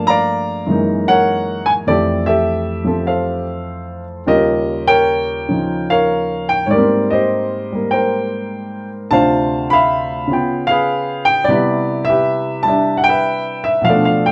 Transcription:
0.00 0.67 G2 soft
0.00 0.68 F3 soft
0.00 0.69 A3 soft
0.00 0.68 A#3 soft
0.07 0.65 D5 medium
0.07 0.64 F5 medium
0.07 1.10 A#5 medium
0.66 1.86 F#2 soft
0.66 1.86 E3 soft
0.66 1.87 G#3 soft
0.66 1.88 A#3 soft
0.71 1.89 D#4 soft
1.08 1.84 A#4 medium
1.08 1.84 C#5 medium
1.08 1.69 F#5 medium
1.66 1.71 G#5 medium
1.87 4.27 F2 soft
1.87 4.27 E3 soft
1.87 4.27 A3 soft
1.87 2.25 G4 medium
1.87 2.26 A4 medium
1.87 2.28 D5 medium
2.26 3.43 G4 medium
2.26 2.86 A4 medium
2.26 3.08 E5 medium
2.84 4.26 F3 soft
2.84 4.27 C4 soft
2.84 3.06 A4 soft
3.07 4.23 A4 soft
3.07 4.23 C5 soft
3.07 4.03 F5 medium
4.26 6.71 D#2 soft
4.26 5.47 C#3 soft
4.26 6.69 G3 soft
4.26 6.71 F4 soft
4.26 5.45 G4 medium
4.26 4.86 A#4 medium
4.26 4.90 D#5 medium
4.88 5.89 A#4 medium
4.88 5.90 C#5 medium
4.88 5.86 G5 medium
5.48 6.71 C#3 soft
5.48 6.72 F3 soft
5.48 6.73 D#4 soft
5.90 6.68 A#4 medium
5.90 6.65 C#5 medium
5.90 6.47 F5 medium
6.49 6.66 G5 medium
6.66 9.10 G#2 soft
6.66 6.71 C#5 medium
6.71 7.71 G3 soft
6.71 7.11 G4 soft
6.71 7.88 A#4 medium
6.71 7.13 D5 medium
6.75 7.73 A#3 soft
6.75 9.15 C4 medium
7.10 8.29 G4 medium
7.10 7.91 C5 medium
7.10 7.94 D#5 medium
7.72 9.12 G3 soft
7.72 9.13 A#3 soft
7.91 9.08 A#4 soft
7.91 9.08 C5 soft
7.91 8.88 G5 medium
9.11 10.30 D2 soft
9.11 10.30 C3 soft
9.11 10.30 D4 soft
9.11 10.30 F4 soft
9.11 10.27 C5 medium
9.11 9.71 F5 medium
9.11 9.66 A5 medium
9.70 10.27 E5 medium
9.70 10.65 F5 medium
9.70 10.72 B5 medium
10.27 11.48 C#3 soft
10.27 11.48 B3 soft
10.27 11.49 F4 soft
10.33 11.24 G5 medium
10.67 11.45 G#4 medium
10.67 11.45 B4 medium
10.67 11.24 F5 medium
11.25 11.48 G5 medium
11.44 13.88 C3 soft
11.44 12.02 D5 medium
11.49 12.63 G3 soft
11.49 13.89 B3 soft
11.49 13.89 E4 soft
11.49 12.08 G4 medium
11.49 12.08 B4 medium
12.05 12.62 E5 medium
12.09 13.25 G4 medium
12.09 13.07 B4 medium
12.63 13.87 G3 soft
12.63 12.97 A5 medium
12.68 13.89 D4 soft
12.68 13.08 E5 medium
12.97 13.08 F#5 medium
13.04 13.62 G5 medium
13.08 13.85 B4 medium
13.08 13.62 E5 medium
13.64 13.85 E5 medium
13.81 14.32 B2 soft
13.81 14.32 F3 soft
13.81 14.04 F5 medium
13.89 14.32 A3 soft
13.89 14.32 D4 medium
13.89 14.32 A4 medium
13.89 14.32 D5 medium
14.05 14.28 F5 medium
14.26 14.32 G5 medium

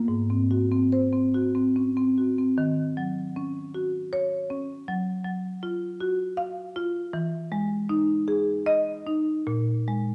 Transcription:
0.08 2.53 G#2 medium
0.30 0.63 C4 medium
0.51 0.83 F#4 medium
0.71 1.04 C4 medium
0.92 1.25 C5 medium
1.13 1.45 C4 medium
1.34 1.67 F#4 medium
1.55 1.88 C4 medium
1.76 1.96 C#4 soft
1.97 2.30 C4 medium
2.18 2.50 F#4 soft
2.39 2.58 C4 soft
2.58 4.84 D#3 medium
2.97 3.58 F#3 medium
3.36 3.97 C#4 medium
3.75 4.35 F#4 medium
4.13 4.73 C#5 medium
4.50 4.88 C#4 medium
4.88 5.24 F#3 medium
5.25 5.85 F#3 medium
5.63 6.23 F4 medium
6.00 6.60 F#4 medium
6.37 6.98 F5 loud
6.76 7.14 F4 medium
7.13 9.42 E3 medium
7.52 8.12 G#3 medium
7.89 8.51 D#4 medium
8.28 8.90 G#4 medium
8.66 9.30 D#5 loud
9.07 9.46 D#4 medium
9.47 10.15 A#2 medium
9.88 10.15 G#3 medium

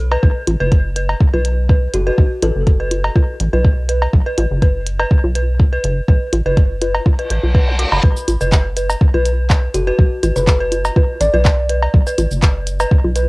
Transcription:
0.00 0.17 B1 medium
0.11 0.13 B4 medium
0.11 cowbell medium
0.23 0.32 B1 medium
0.23 0.26 B4 medium
0.23 kick loud
0.47 0.56 A1 loud
0.47 closed hi-hat medium
0.47 low bongo medium
0.60 1.15 F#1 medium
0.60 0.63 B4 loud
0.72 kick loud
0.72 closed hi-hat soft
0.96 1.00 B4 medium
0.96 closed hi-hat medium
1.09 cowbell medium
1.21 kick loud
1.33 1.88 B1 medium
1.33 1.37 B4 medium
1.33 low bongo medium
1.45 closed hi-hat medium
1.69 1.73 B4 medium
1.69 kick loud
1.94 2.11 F#1 medium
1.94 2.02 F#4 medium
1.94 closed hi-hat medium
2.07 2.14 F#4 medium
2.07 2.10 B4 loud
2.18 2.27 B1 medium
2.18 kick loud
2.43 2.51 A1 medium
2.43 2.80 A4 medium
2.43 2.46 B4 medium
2.43 closed hi-hat medium
2.43 low bongo medium
2.56 3.10 F#1 medium
2.67 kick medium
2.67 closed hi-hat soft
2.80 2.83 B4 medium
2.91 closed hi-hat medium
2.91 low bongo soft
3.04 cowbell medium
3.16 3.19 B4 medium
3.16 kick loud
3.16 low bongo medium
3.40 3.49 A1 medium
3.40 closed hi-hat medium
3.53 4.07 B1 medium
3.53 3.56 B4 medium
3.53 low bongo soft
3.65 kick loud
3.89 3.92 B4 medium
3.89 closed hi-hat medium
4.02 cowbell medium
4.13 4.22 B1 loud
4.13 kick loud
4.26 4.29 B4 medium
4.38 4.46 A1 loud
4.38 closed hi-hat medium
4.38 low bongo medium
4.51 5.05 F#1 medium
4.62 4.65 B4 medium
4.62 kick medium
4.62 closed hi-hat soft
4.87 closed hi-hat medium
4.99 5.02 B4 medium
4.99 cowbell medium
5.11 kick loud
5.24 5.78 B1 medium
5.24 low bongo medium
5.35 5.39 B4 medium
5.35 closed hi-hat medium
5.60 kick loud
5.73 5.76 B4 medium
5.84 6.01 F#1 medium
5.84 closed hi-hat medium
6.08 6.17 B1 medium
6.08 6.12 B4 medium
6.08 kick loud
6.33 6.42 A1 medium
6.33 closed hi-hat medium
6.33 low bongo medium
6.46 7.00 F#1 medium
6.46 6.49 B4 loud
6.57 kick medium
6.57 closed hi-hat soft
6.82 6.85 B4 medium
6.82 closed hi-hat medium
6.82 low bongo soft
6.95 cowbell medium
7.06 kick loud
7.06 reverse cymbal medium
7.06 low bongo medium
7.19 7.22 B4 medium
7.19 closed hi-hat soft
7.30 7.39 A1 medium
7.30 7.35 B4 medium
7.30 closed hi-hat medium
7.43 7.85 B1 medium
7.43 low bongo medium
7.55 7.58 B4 medium
7.55 kick loud
7.68 zap medium
7.79 7.81 F#4 medium
7.79 closed hi-hat medium
7.92 8.00 F#1 medium
7.92 7.94 B5 medium
7.92 cowbell medium
8.03 8.12 B1 medium
8.03 8.07 B4 medium
8.03 kick loud
8.17 cabasa soft
8.28 8.37 A1 loud
8.28 closed hi-hat medium
8.28 low bongo medium
8.28 cabasa soft
8.41 8.95 F#1 medium
8.41 8.44 B4 medium
8.41 cabasa soft
8.52 kick loud
8.52 clap medium
8.52 closed hi-hat soft
8.52 cabasa soft
8.77 8.80 B4 medium
8.77 closed hi-hat medium
8.77 cabasa soft
8.90 cowbell medium
8.90 cabasa soft
9.01 kick loud
9.14 9.68 B1 medium
9.14 9.17 B4 loud
9.14 low bongo medium
9.25 closed hi-hat medium
9.25 cabasa soft
9.50 9.53 B4 medium
9.50 kick loud
9.50 clap medium
9.74 9.91 F#1 medium
9.74 9.83 F#4 medium
9.74 closed hi-hat medium
9.74 cabasa soft
9.87 9.95 F#4 medium
9.87 9.90 B4 loud
9.99 10.07 B1 loud
9.99 kick loud
10.23 10.32 A1 loud
10.23 10.26 B4 medium
10.23 closed hi-hat medium
10.23 low bongo medium
10.23 cabasa soft
10.36 10.90 F#1 medium
10.36 10.43 B4 medium
10.36 cabasa soft
10.47 10.56 B4 medium
10.47 kick loud
10.47 clap medium
10.47 closed hi-hat soft
10.47 cabasa soft
10.60 10.63 B4 medium
10.72 closed hi-hat medium
10.72 low bongo medium
10.72 cabasa soft
10.85 cowbell medium
10.85 cabasa soft
10.96 11.00 B4 medium
10.96 kick loud
10.96 low bongo medium
11.21 11.29 A1 medium
11.21 11.69 D5 medium
11.21 closed hi-hat medium
11.21 cabasa soft
11.34 11.88 B1 medium
11.34 11.37 B4 loud
11.34 low bongo medium
11.45 kick loud
11.45 clap medium
11.69 11.73 B4 medium
11.69 closed hi-hat medium
11.82 cowbell medium
11.94 12.03 B1 loud
11.94 kick loud
12.07 12.10 B4 medium
12.07 cabasa soft
12.18 12.27 A1 medium
12.18 closed hi-hat medium
12.18 low bongo medium
12.18 cabasa soft
12.31 12.85 F#1 medium
12.31 cabasa soft
12.42 12.46 B4 medium
12.42 kick loud
12.42 clap medium
12.42 closed hi-hat soft
12.42 cabasa soft
12.67 closed hi-hat medium
12.67 cabasa soft
12.80 12.83 B4 medium
12.80 cowbell medium
12.80 cabasa soft
12.91 kick loud
13.04 13.29 B1 medium
13.04 low bongo medium
13.16 13.19 B4 medium
13.16 closed hi-hat medium
13.16 cabasa soft

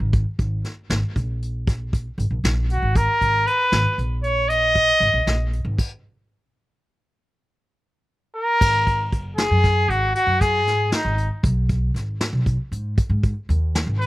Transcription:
0.00 0.23 G#1 medium
0.13 kick medium
0.13 closed hi-hat medium
0.39 0.61 G#1 medium
0.39 kick medium
0.39 closed hi-hat soft
0.64 snare soft
0.64 closed hi-hat soft
0.90 1.01 G#1 medium
0.90 snare medium
0.90 closed hi-hat medium
1.16 2.06 A#1 medium
1.16 kick medium
1.16 closed hi-hat soft
1.42 closed hi-hat medium
1.67 kick medium
1.67 snare soft
1.67 closed hi-hat medium
1.93 kick medium
1.93 closed hi-hat medium
2.18 2.30 G#1 medium
2.18 closed hi-hat medium
2.30 2.42 A#1 medium
2.44 2.78 A#1 medium
2.44 snare loud
2.44 closed hi-hat medium
2.70 2.98 F#4 medium
2.70 closed hi-hat medium
2.82 3.05 G#1 medium
2.96 3.49 A#4 loud
2.96 kick medium
2.96 closed hi-hat medium
3.21 3.44 G#1 medium
3.21 kick medium
3.21 closed hi-hat medium
3.47 3.99 B4 medium
3.47 closed hi-hat medium
3.72 3.84 G#1 medium
3.72 snare medium
3.72 closed hi-hat medium
3.98 4.89 A#1 medium
3.98 closed hi-hat soft
4.23 4.51 C#5 medium
4.23 closed hi-hat medium
4.49 5.52 D#5 loud
4.49 closed hi-hat medium
4.75 kick medium
4.75 closed hi-hat medium
5.00 5.12 G#1 medium
5.00 closed hi-hat medium
5.13 5.25 A#1 medium
5.27 5.61 A#1 medium
5.27 snare medium
5.27 closed hi-hat medium
5.53 closed hi-hat medium
5.65 5.76 G#1 medium
5.79 kick medium
5.79 crash medium
8.36 9.08 A#4 medium
8.61 9.12 G#1 medium
8.61 kick medium
8.61 crash medium
8.87 kick medium
8.87 closed hi-hat soft
9.12 9.46 F#1 medium
9.12 kick medium
9.12 closed hi-hat soft
9.37 9.91 G#4 medium
9.37 snare loud
9.37 closed hi-hat medium
9.51 9.85 F#2 medium
9.64 kick medium
9.64 snare soft
9.64 closed hi-hat soft
9.88 10.11 G#1 medium
9.88 10.15 F#4 medium
9.88 closed hi-hat medium
10.15 10.42 F#4 medium
10.15 closed hi-hat medium
10.27 10.65 F#2 medium
10.41 10.92 G#4 medium
10.41 kick medium
10.41 snare soft
10.41 closed hi-hat medium
10.65 10.88 G#2 medium
10.65 snare soft
10.65 closed hi-hat medium
10.92 11.28 D#4 medium
10.92 snare loud
10.92 closed hi-hat medium
11.05 11.27 G#1 medium
11.18 closed hi-hat medium
11.43 11.89 B1 medium
11.43 kick loud
11.43 closed hi-hat medium
11.69 kick medium
11.69 closed hi-hat medium
11.94 12.28 G#1 medium
11.94 snare soft
11.94 closed hi-hat medium
12.21 snare loud
12.21 closed hi-hat medium
12.33 12.55 B1 medium
12.46 kick medium
12.46 closed hi-hat medium
12.72 12.94 G#2 medium
12.72 closed hi-hat medium
12.98 kick medium
12.98 closed hi-hat medium
13.09 13.32 G#2 medium
13.23 kick medium
13.23 closed hi-hat medium
13.49 13.83 D#2 medium
13.49 closed hi-hat medium
13.75 snare loud
13.75 closed hi-hat medium
13.87 14.06 G#1 medium
14.00 14.06 B4 loud
14.00 closed hi-hat medium

